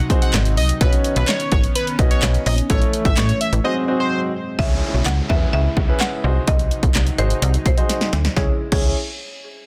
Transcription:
Already playing: C3 F#3 D#4
0.10 C4 D#4 F#4 G#4 C5, kick, closed hi-hat
0.22 F#5, closed hi-hat
0.34 G#1, snare, clap, closed hi-hat
0.45 closed hi-hat
0.57 C2 D#5, open hi-hat
0.69 closed hi-hat
0.81 B1 D#3 B3 C#4 D#4 F#4 B4 C#5, kick, closed hi-hat
0.93 closed hi-hat
1.04 closed hi-hat
1.16 B1 B4, closed hi-hat
1.28 C#5, snare, clap, closed hi-hat
1.40 closed hi-hat
1.52 G#1 C#5, kick, closed hi-hat
1.64 closed hi-hat
1.75 B4, closed hi-hat
1.87 closed hi-hat
1.99 B1 C#4 D#4 F#4 B4 D#5, kick, closed hi-hat
2.11 C#5, closed hi-hat
2.23 B1, snare, clap, closed hi-hat
2.34 closed hi-hat
2.46 A#1 D#5, open hi-hat
2.58 closed hi-hat
2.70 A1 E3 A3 C#4 E4 A4 C#5, kick, closed hi-hat
2.82 closed hi-hat
2.93 closed hi-hat
3.05 A1 E5, kick, closed hi-hat
3.17 A2 C#5, snare, clap, closed hi-hat
3.29 closed hi-hat
3.41 E5, closed hi-hat
3.53 A1, closed hi-hat
3.64 F#3 G#3 C4 D#4 F#4 G#4 C5 D#5
3.88 C4 D#4 F#4 G#4 C5
4.00 C5
4.59 C#2 C#3 G#3 C#4 E4 G#4 C#5 E5, kick, downlifter
4.94 B1
5.06 C#2 F#5, snare, clap
5.29 E2 C#4 E4 G#4 B4 E5, kick
5.53 C#2 E5
5.77 C#2, kick
5.88 C#4 E4 G#4 B4
6.00 F#5, snare, clap
6.24 C2 C3 F#3 D#4 F#4 G#4 C5
6.47 C2 D#5, kick, closed hi-hat
6.59 closed hi-hat
6.71 closed hi-hat
6.83 B1, kick, closed hi-hat
6.95 C2, snare, clap, closed hi-hat
7.07 closed hi-hat
7.18 G#1 D#4 F#4 G#4 C5, closed hi-hat
7.30 closed hi-hat
7.42 C2, closed hi-hat
7.54 closed hi-hat
7.66 B1 C5, kick, closed hi-hat
7.77 D#4 F#4 G#4 C5, closed hi-hat
7.89 snare, closed hi-hat
8.01 snare, closed hi-hat
8.13 D2, snare, closed hi-hat
8.25 snare, closed hi-hat
8.36 C#2 C#3 G#3 C#4 E4 G#4 C#5, kick, snare
8.72 C#2 C#4 E4 G#4 C#5, kick, crash

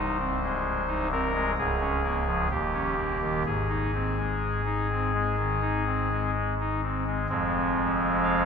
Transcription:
Already playing: C1 C2 D#4 C5
0.19 C4
0.42 G#3
0.88 D#4
1.12 C4 A#4
1.34 G#3
1.58 C#1 C#2 G#4
1.81 C#4
2.03 A#3
2.26 F3
2.50 D#1 D#2 G4
2.73 C#4
2.97 A#3
3.22 D#3
3.46 G#1 G#2 G#4
3.69 D#4
3.95 C4
4.18 G#3
4.66 D#4
4.91 C4
5.14 G#3
5.38 D#3
5.62 D#4
5.87 C4
6.12 G#3
6.60 D#4
6.83 C4
7.07 G#3
7.29 F1 F2 F3 G#3 C4
8.23 F5

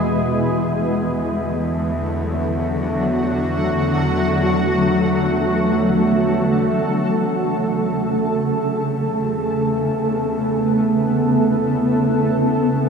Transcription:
Already playing: E2 B2 E3 G#3 B3 E4 G#4 E5
0.55 E2 D3
0.90 A3
1.09 F#3
1.70 F#4
3.18 A4
6.86 E2 C#3 E5
8.33 B3
9.09 E4

